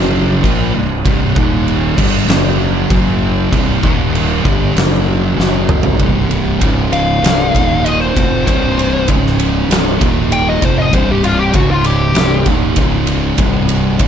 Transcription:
0.00 0.39 F#1 medium
0.00 0.42 F#2 loud
0.00 0.43 C#3 loud
0.00 0.43 F#3 loud
0.00 snare soft
0.43 0.72 A#1 loud
0.43 0.73 A#2 medium
0.43 0.73 F3 loud
0.43 0.74 A#3 loud
0.43 kick loud
0.43 crash medium
0.74 1.03 C1 medium
0.74 0.99 C2 medium
0.74 0.99 G2 medium
1.05 1.34 C1 loud
1.05 1.35 C2 medium
1.05 1.35 G2 loud
1.05 1.35 C3 loud
1.05 kick loud
1.05 crash medium
1.36 1.94 D#1 loud
1.36 1.96 D#2 medium
1.36 1.97 A#2 loud
1.36 1.97 D#3 loud
1.36 kick loud
1.68 crash medium
1.97 2.27 G1 loud
1.97 2.27 G2 medium
1.97 2.27 D3 loud
1.97 2.28 G3 loud
1.97 kick loud
1.97 crash loud
2.27 2.86 F#1 medium
2.27 2.88 F#2 loud
2.27 2.89 C#3 loud
2.27 2.89 F#3 loud
2.27 snare loud
2.27 crash medium
2.89 3.48 F#1 loud
2.89 3.51 F#2 medium
2.89 3.51 C#3 loud
2.89 3.51 F#3 loud
2.89 kick loud
2.89 crash medium
3.52 3.81 C1 medium
3.52 3.82 C2 loud
3.52 3.83 G2 loud
3.52 3.83 C3 loud
3.52 kick loud
3.52 crash medium
3.82 4.41 D#1 loud
3.82 4.44 D#2 medium
3.82 4.44 A#2 loud
3.82 4.44 D#3 loud
3.82 kick loud
4.15 crash medium
4.45 4.74 G1 medium
4.45 4.75 G2 medium
4.45 4.75 D3 loud
4.45 4.75 G3 loud
4.45 kick loud
4.75 5.33 F#1 loud
4.75 5.37 F#2 loud
4.75 5.37 C#3 loud
4.75 5.37 F#3 loud
4.75 snare loud
4.75 crash medium
5.37 5.95 F#1 loud
5.37 5.99 F#2 medium
5.37 5.99 C#3 loud
5.37 5.99 F#3 medium
5.37 snare medium
5.69 mid tom medium
5.83 floor tom loud
5.99 6.57 C1 medium
5.99 6.60 C2 medium
5.99 6.61 G2 loud
5.99 6.61 C3 loud
5.99 kick loud
5.99 ride medium
6.31 ride medium
6.61 7.19 C#1 medium
6.61 7.22 C#2 medium
6.61 7.22 G#2 loud
6.61 7.22 C#3 loud
6.61 kick medium
6.61 ride loud
6.93 7.82 F5 loud
6.93 ride medium
7.23 7.52 C1 medium
7.23 7.53 C2 medium
7.23 7.54 G2 loud
7.23 7.54 C3 loud
7.23 snare loud
7.23 ride loud
7.54 8.12 D#1 medium
7.54 8.14 D#2 medium
7.54 8.15 A#2 loud
7.54 8.15 D#3 loud
7.54 kick loud
7.54 ride medium
7.85 8.00 D#5 medium
7.85 ride medium
8.01 8.46 C5 medium
8.15 8.45 F1 medium
8.15 8.45 F2 loud
8.15 8.46 C3 loud
8.15 8.46 F3 loud
8.15 kick loud
8.15 ride medium
8.47 9.05 C1 medium
8.47 9.08 C2 medium
8.47 9.08 G2 loud
8.47 9.08 C3 loud
8.47 9.07 C5 loud
8.47 kick loud
8.47 ride loud
8.79 ride medium
9.08 9.66 C#1 medium
9.08 9.68 C#2 medium
9.08 9.69 G#2 loud
9.08 9.69 C#3 loud
9.08 kick loud
9.08 ride loud
9.26 snare soft
9.39 ride medium
9.69 9.98 C1 medium
9.69 9.99 C2 medium
9.69 9.99 G2 loud
9.69 9.99 C3 loud
9.69 snare loud
9.69 ride loud
9.99 10.59 D#1 loud
9.99 10.61 D#2 medium
9.99 10.61 A#2 loud
9.99 10.61 D#3 loud
9.99 kick loud
9.99 ride medium
10.32 10.47 G5 medium
10.32 ride loud
10.48 10.65 D#5 medium
10.61 10.91 F1 medium
10.61 10.91 F2 medium
10.61 10.91 C3 medium
10.61 10.92 F3 loud
10.61 10.78 C5 medium
10.61 kick loud
10.61 ride medium
10.79 10.94 D#5 medium
10.91 11.51 C1 medium
10.91 11.53 C2 medium
10.91 11.53 G2 loud
10.91 11.53 C3 loud
10.91 11.08 C5 medium
10.91 kick loud
10.91 ride loud
11.11 11.24 G4 medium
11.24 11.39 F4 medium
11.24 ride medium
11.40 11.55 G4 medium
11.53 12.12 C#1 medium
11.53 12.15 C#2 loud
11.53 12.15 G#2 medium
11.53 12.15 C#3 loud
11.53 11.70 F#4 medium
11.53 kick loud
11.53 ride medium
11.71 11.85 F4 medium
11.84 12.45 G4 medium
11.84 ride medium
12.15 12.44 C1 loud
12.15 12.45 C2 medium
12.15 12.46 G2 medium
12.15 12.46 C3 loud
12.15 snare loud
12.15 ride loud
12.46 12.75 D#1 loud
12.46 12.76 D#2 medium
12.46 12.76 A#2 loud
12.46 12.76 D#3 loud
12.46 kick loud
12.46 ride medium
12.76 13.35 C#1 loud
12.76 13.37 C#2 medium
12.76 13.38 G#2 loud
12.76 13.38 C#3 loud
12.76 kick loud
12.76 ride loud
13.07 ride medium
13.38 13.96 C1 loud
13.38 13.99 C2 loud
13.38 13.99 G2 loud
13.38 14.00 C3 loud
13.38 kick loud
13.38 ride loud
13.69 ride medium
13.99 14.08 C#1 medium
13.99 14.08 C#2 medium
13.99 14.08 G#2 loud
13.99 14.08 C#3 loud
13.99 kick loud
13.99 ride loud

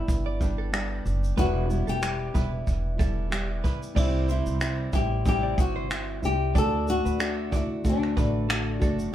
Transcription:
0.00 0.42 G3 soft
0.00 1.33 G3 medium
0.00 0.42 B3 soft
0.00 1.33 B3 medium
0.00 0.40 D4 soft
0.00 1.34 D4 medium
0.00 1.01 E4 medium
0.00 0.40 G4 medium
0.00 1.35 B4 medium
0.08 1.01 G1 medium
0.08 kick medium
0.08 shaker medium
0.26 0.40 D5 medium
0.40 0.71 G3 soft
0.40 0.72 B3 soft
0.40 0.73 D4 soft
0.40 0.73 G4 soft
0.40 kick medium
0.40 shaker soft
0.58 0.89 A4 medium
0.72 1.38 G3 medium
0.72 1.38 B3 medium
0.72 1.38 D4 medium
0.72 1.38 G4 medium
0.72 finger snap loud
0.72 shaker medium
1.06 1.35 F#1 medium
1.06 shaker soft
1.24 shaker soft
1.36 1.84 E1 loud
1.36 1.70 E2 medium
1.36 1.70 B2 medium
1.36 1.70 E3 medium
1.36 3.92 G3 medium
1.36 1.70 G3 medium
1.36 3.92 B3 medium
1.36 1.69 B3 medium
1.36 3.93 E4 soft
1.36 1.68 E4 medium
1.36 1.85 F#4 medium
1.36 1.68 B4 medium
1.36 3.93 B4 medium
1.36 kick medium
1.36 shaker medium
1.69 2.00 E3 soft
1.69 2.01 G3 soft
1.69 2.02 B3 soft
1.69 2.02 E4 soft
1.69 shaker soft
1.87 2.31 E1 medium
1.87 3.61 G4 loud
1.87 2.01 A4 medium
1.87 shaker soft
2.02 2.34 E3 medium
2.02 2.35 G3 medium
2.02 2.34 B3 medium
2.02 2.33 E4 medium
2.02 2.33 G4 medium
2.02 finger snap medium
2.02 shaker medium
2.34 2.65 E1 medium
2.34 3.00 E3 soft
2.34 3.00 G3 soft
2.34 2.98 B3 soft
2.34 2.98 E4 soft
2.34 2.51 B4 medium
2.34 kick medium
2.34 shaker medium
2.67 3.60 E1 medium
2.67 kick medium
2.67 shaker medium
2.98 3.29 E3 soft
2.98 3.30 G3 soft
2.98 3.30 B3 soft
2.98 3.31 E4 soft
2.98 3.30 A4 medium
2.98 kick medium
2.98 shaker soft
3.30 3.95 E3 medium
3.30 3.95 G3 medium
3.30 3.96 B3 medium
3.30 3.96 E4 medium
3.30 3.49 G4 medium
3.30 finger snap loud
3.30 shaker medium
3.64 3.81 B4 medium
3.64 kick medium
3.64 shaker soft
3.83 shaker soft
3.94 4.42 C2 medium
3.94 4.60 C3 medium
3.94 4.59 E3 medium
3.94 6.50 G3 medium
3.94 4.60 G3 medium
3.94 6.51 C4 soft
3.94 4.61 C4 medium
3.94 4.61 E4 medium
3.94 6.52 E4 soft
3.94 4.27 D5 medium
3.94 kick medium
3.94 crash medium
3.98 4.29 E4 medium
3.98 6.52 C5 medium
4.28 4.96 E4 medium
4.28 4.76 C5 medium
4.28 shaker soft
4.46 4.90 C2 medium
4.46 shaker medium
4.60 4.93 E3 medium
4.60 4.93 G3 medium
4.60 4.93 C4 medium
4.60 4.92 E4 medium
4.60 finger snap medium
4.60 shaker medium
4.93 5.54 A1 medium
4.93 5.25 G3 soft
4.93 5.25 C4 soft
4.93 5.25 E4 soft
4.93 5.27 G4 medium
4.93 5.10 E5 medium
4.93 kick medium
4.93 shaker medium
5.25 5.90 C3 medium
5.25 5.88 E3 medium
5.25 5.89 G3 medium
5.25 5.89 C4 medium
5.25 5.90 E4 medium
5.25 5.60 G4 medium
5.25 kick medium
5.25 shaker medium
5.43 5.57 D5 medium
5.58 6.19 G1 medium
5.58 6.20 F#4 medium
5.58 kick medium
5.58 shaker medium
5.76 6.07 C5 medium
5.89 6.22 E3 soft
5.89 6.23 G3 medium
5.89 6.22 C4 medium
5.89 6.21 E4 medium
5.89 finger snap loud
5.89 shaker medium
6.22 6.52 C2 medium
6.22 6.55 G3 soft
6.22 6.55 C4 soft
6.22 6.55 E4 medium
6.22 6.57 G4 medium
6.22 shaker soft
6.53 7.01 D2 loud
6.53 7.18 D3 medium
6.53 8.12 A3 soft
6.53 7.19 A3 medium
6.53 8.13 D4 medium
6.53 7.20 D4 medium
6.53 8.13 F#4 medium
6.53 7.20 F#4 medium
6.53 6.86 D5 medium
6.53 8.14 D5 medium
6.53 kick medium
6.53 shaker medium
6.58 6.89 A4 loud
6.88 7.55 F#4 medium
6.88 shaker medium
7.05 7.48 D2 medium
7.05 7.19 B4 medium
7.05 shaker medium
7.19 7.52 D3 medium
7.19 7.52 A3 medium
7.19 7.52 D4 medium
7.19 7.50 F#4 medium
7.19 7.50 A4 medium
7.19 finger snap medium
7.19 shaker medium
7.51 8.13 D2 medium
7.51 7.84 A3 soft
7.51 7.84 D4 soft
7.51 7.84 F#4 soft
7.51 7.69 D5 medium
7.51 kick medium
7.51 shaker medium
7.56 7.87 E4 medium
7.84 8.48 D3 medium
7.84 8.49 A3 medium
7.84 8.50 D4 medium
7.84 8.50 F#4 medium
7.84 kick medium
7.84 shaker medium
7.89 8.80 D4 medium
8.03 finger snap soft
8.16 8.77 A1 medium
8.16 9.13 A3 soft
8.16 9.14 D4 soft
8.16 9.14 F#4 soft
8.16 8.47 B4 medium
8.16 9.14 D5 soft
8.16 kick medium
8.16 shaker soft
8.49 8.81 D3 medium
8.49 8.81 A3 medium
8.49 8.80 D4 medium
8.49 8.78 F#4 medium
8.49 8.66 A4 medium
8.49 finger snap loud
8.49 shaker medium
8.80 9.11 F#1 medium
8.80 9.13 A3 soft
8.80 9.13 D4 medium
8.80 9.13 F#4 medium
8.80 8.98 A4 medium
8.80 kick medium
8.80 shaker soft
8.99 shaker soft

